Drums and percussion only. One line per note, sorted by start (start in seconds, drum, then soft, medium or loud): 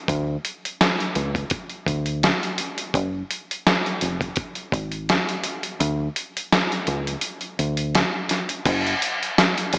0.08 kick loud
0.08 closed hi-hat loud
0.45 closed hi-hat medium
0.65 closed hi-hat medium
0.81 snare loud
0.81 closed hi-hat medium
1.00 closed hi-hat soft
1.15 closed hi-hat medium
1.35 kick medium
1.35 closed hi-hat soft
1.50 kick loud
1.50 closed hi-hat medium
1.69 closed hi-hat soft
1.86 kick medium
1.86 closed hi-hat medium
2.06 closed hi-hat soft
2.23 snare loud
2.23 closed hi-hat medium
2.43 closed hi-hat soft
2.58 closed hi-hat medium
2.78 closed hi-hat medium
2.94 kick loud
2.94 closed hi-hat loud
3.31 closed hi-hat medium
3.51 closed hi-hat medium
3.67 snare loud
3.67 closed hi-hat medium
3.86 closed hi-hat soft
4.01 closed hi-hat medium
4.21 kick medium
4.21 closed hi-hat soft
4.36 kick loud
4.36 closed hi-hat medium
4.55 closed hi-hat soft
4.72 kick loud
4.72 closed hi-hat medium
4.92 closed hi-hat soft
5.09 snare loud
5.09 closed hi-hat medium
5.29 closed hi-hat soft
5.44 closed hi-hat medium
5.63 closed hi-hat medium
5.80 closed hi-hat loud
6.16 closed hi-hat medium
6.37 closed hi-hat medium
6.52 snare loud
6.52 closed hi-hat medium
6.72 closed hi-hat soft
6.87 closed hi-hat medium
7.07 closed hi-hat soft
7.21 closed hi-hat medium
7.41 closed hi-hat soft
7.59 closed hi-hat medium
7.77 closed hi-hat soft
7.95 snare loud
7.95 closed hi-hat medium
8.29 snare soft
8.29 closed hi-hat medium
8.49 closed hi-hat medium
8.65 kick loud
8.65 closed hi-hat loud
8.65 crash loud
8.87 closed hi-hat soft
9.02 closed hi-hat medium
9.23 closed hi-hat medium
9.38 snare loud
9.38 closed hi-hat loud
9.58 closed hi-hat medium
9.73 closed hi-hat medium